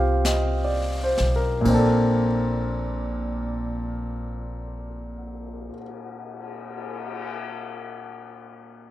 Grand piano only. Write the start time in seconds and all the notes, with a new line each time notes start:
Already playing: F3 A#3 C4 D#4 F4 G4 F5 G5
0.26 D#5
0.64 D5
1.03 C5
1.36 A#4
1.61 A#2 A#3
1.67 C4 D4
1.74 A4